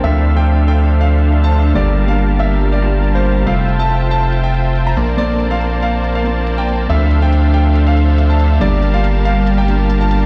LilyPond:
<<
  \new Staff \with { instrumentName = "Grand piano" } { \time 4/4 \key d \minor \tempo 4 = 140 e''8 r16 g''8 r16 g''8 r16 f''8. r16 a''8 r16 | d''8 r16 f''8 r16 e''8 r16 d''8. r16 c''8 r16 | f''8 r16 a''8 r16 a''8 r16 g''8. r16 bes''8 r16 | d''8 r16 f''8 r16 f''8 r16 f''8. r16 g''8 r16 |
e''8 r16 g''8 r16 g''8 r16 f''8. r16 a''8 r16 | d''8 r16 f''8 r16 f''8 r16 g''8. r16 a''8 r16 | }
  \new Staff \with { instrumentName = "Supersaw synth" } { \time 4/4 \key d \minor <d' a' c'' e'' f''>1 | <g g' bes' f'' a''>1 | <f' c'' e'' g'' a''>2.~ <f' c'' e'' g'' a''>8 <bes bes' c'' d'' a''>8~ | <bes bes' c'' d'' a''>1 |
<d' a' c'' e'' f''>1 | <g g' bes' f'' a''>1 | }
  \new Staff \with { instrumentName = "Clean electric guitar" } { \time 4/4 \key d \minor <f c' d' e' a'>8. <f c' d' a'>2.~ <f c' d' a'>16 | <g bes d' f' a'>8. <g bes d' f' a''>4.~ <g bes d' f' a''>16 <g bes d' f' a''>4. | <g c' e' f' a'>8. <g c' f' a' e''>2~ <g c' f' a' e''>8. r8 | <bes c' d' f' a'>8. <bes c' d' f' a''>4.~ <bes c' d' f' a''>16 <bes c' d' f' a''>4. |
<f c' d' e' a'>8. <f c' d' a'>2.~ <f c' d' a'>16 | <g bes d' f' a'>8. <g bes d' f' a''>4.~ <g bes d' f' a''>16 <g bes d' f' a''>4. | }
  \new Staff \with { instrumentName = "Sub bass" } { \clef bass \time 4/4 \key d \minor d,1 | g,,1 | f,,2.~ f,,8 bes,,8~ | bes,,1 |
d,1 | g,,1 | }
  \new DrumStaff \with { instrumentName = "Drums" } \drummode { \time 4/4 hh8 hh8 hh8 hh8 hh8 hh8 hh8 hh8 | hh8 hh8 hh8 hh8 hh8 hh8 hh8 hh8 | hh8 hh8 hh8 hh8 hh8 hh8 hh8 hh8 | hh8 hh8 hh8 hh8 hh8 hh8 hh8 hh8 |
hh8 hh8 hh8 hh8 hh8 hh8 hh8 hh8 | hh8 hh8 hh8 hh8 hh8 hh8 hh8 hh8 | }
>>